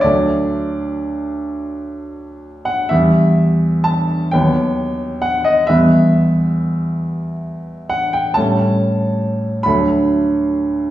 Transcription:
<<
  \new Staff \with { instrumentName = "Grand piano" } { \time 6/8 \key d \major \tempo 4. = 45 d''2~ d''8. fis''16 | e''4 a''8 g''4 fis''16 dis''16 | e''2~ e''8 fis''16 g''16 | a''4. b''4. | }
  \new Staff \with { instrumentName = "Grand piano" } { \time 6/8 \key d \major <d, fis d' a'>2. | <e, g b g'>4. <dis, fis b b'>4. | <e, g b b'>2. | <a, g cis' a'>4. <d, fis d' a'>4. | }
>>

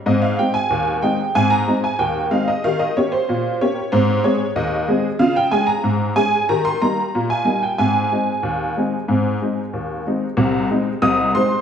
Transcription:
\new Staff \with { instrumentName = "Honky-tonk piano" } { \time 2/4 \key aes \major \tempo 4 = 93 << { ees''16 f''16 g''16 aes''8. g''8 | aes''16 bes''8 aes''16 g''8 f''16 ees''16 | f''16 ees''16 des''16 c''8. des''8 | c''8 des''8 ees''4 |
f''16 g''16 aes''16 bes''8. aes''8 | bes''16 c'''16 bes''8. aes''8 g''16 | aes''2~ | aes''4. r8 |
r4 <ees'' ees'''>8 <c'' c'''>8 | } \\ { <aes, c'>8 <aes c' ees'>8 ees,8 <aes c' ees'>8 | <aes, c'>8 <aes c' ees'>8 ees,8 <aes c' ees'>8 | <ees g'>8 <bes des' g'>8 bes,8 <bes des' g'>8 | <aes, c'>8 <aes c' aes'>8 ees,8 <aes c' aes'>8 |
<des f'>8 <aes des' aes'>8 aes,8 <aes des' aes'>8 | <ees g'>8 <g bes ees'>8 bes,8 <g bes ees'>8 | <aes, c'>8 <aes c' ees'>8 ees,8 <aes c' ees'>8 | <aes, c'>8 <aes c' ees'>8 ees,8 <aes c' ees'>8 |
<c, c>8 <aes c' ees'>8 <c, c>8 <aes c' ees'>8 | } >> }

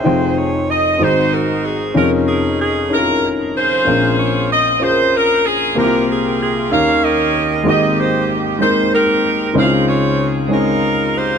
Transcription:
<<
  \new Staff \with { instrumentName = "Saxophone section" } { \time 6/8 \key des \lydian \tempo 4. = 63 << { c''8 des''8 ees''8 c''8 bes'8 aes'8 | bes'8 aes'8 aes'8 bes'8 r8 c''8~ | c''8 des''8 ees''8 c''8 bes'8 aes'8 | bes'8 aes'8 aes'8 f''8 ees''4 |
ees''8 c''8 r8 c''8 bes'4 | f''8 des''4 bes'4 c''8 | } \\ { <ees' aes'>4 r8 <ees' ges'>4. | <des' ees'>4. r4 <f' aes'>8~ | <f' aes'>4 r2 | <f' g'>4. <bes' des''>8 <g' bes'>4 |
<g' c''>4. r8 <ees' g'>4 | <aes' c''>8 <f' aes'>4 <ees' f'>4 <f' g'>8 | } >> }
  \new Staff \with { instrumentName = "Upright piano" } { \time 6/8 \key des \lydian << { <des'' e''>16 r2 r8. | r2. | r2. | r2. |
r2. | r2. | } \\ { <ees' f' aes' c'' g''>4 r8 <c' ees' ges' aes' c''>4 r8 | <des' ees' f' aes' bes'>4 r8 <des' ees' e' f' aes' bes'>4 r8 | <c' des' f' aes' bes'>4 r8 <des' f' aes' bes' c''>4 r8 | <bes c' e' f' g' bes'>4 r8 <bes des' ees' g' bes'>4 r8 |
<aes bes c' ees' ges' g'>4 r8 <aes bes c' ees' bes'>4 r8 | <aes c' des' ees' e' f'>4 r8 <aes c' des' ees' aes'>4 r8 | } >> }
  \new Staff \with { instrumentName = "Upright piano" } { \clef bass \time 6/8 \key des \lydian <f,, f,>4. <aes,, aes,>4. | <f,, f,>2. | <bes,, bes,>2. | <c, c>4. <ees, ees>4. |
<aes,, aes,>2. | <des, des>2. | }
>>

